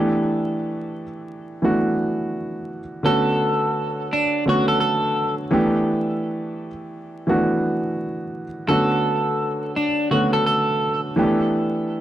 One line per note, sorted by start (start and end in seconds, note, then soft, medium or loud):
0.00 1.02 E3 loud
0.00 1.02 A3 loud
0.00 1.03 B3 medium
0.00 1.03 D4 medium
0.00 1.03 G4 loud
1.62 2.78 E3 medium
1.62 2.78 A3 medium
1.62 2.79 B3 medium
1.62 2.79 D4 medium
1.62 2.79 F#4 loud
3.03 4.19 D3 medium
3.03 4.20 A3 medium
3.03 4.20 B3 medium
3.03 4.20 C#4 medium
3.03 4.21 F#4 loud
3.03 4.07 A4 loud
4.13 4.44 D4 medium
4.45 5.52 D3 medium
4.45 5.50 A3 medium
4.45 5.50 B3 medium
4.45 5.53 C#4 medium
4.45 5.53 F#4 loud
4.45 4.67 F#4 medium
4.68 4.79 A4 medium
4.80 5.34 A4 medium
5.51 6.67 E3 loud
5.51 6.67 A3 loud
5.51 6.67 B3 medium
5.51 6.68 D4 medium
5.51 6.68 G4 loud
7.27 8.43 E3 medium
7.27 8.43 A3 medium
7.27 8.44 B3 medium
7.27 8.44 D4 medium
7.27 8.44 F#4 loud
8.68 9.84 D3 medium
8.68 9.84 A3 medium
8.68 9.85 B3 medium
8.68 9.85 C#4 medium
8.68 9.85 F#4 loud
8.68 9.71 A4 loud
9.76 10.08 D4 medium
10.11 11.17 D3 medium
10.11 11.15 A3 medium
10.11 11.16 B3 medium
10.11 11.18 C#4 medium
10.11 10.30 F#4 medium
10.11 11.18 F#4 medium
10.33 10.45 A4 medium
10.47 11.00 A4 medium
11.16 12.01 E3 loud
11.16 12.01 A3 loud
11.16 12.01 B3 medium
11.16 12.01 D4 medium
11.16 12.01 G4 loud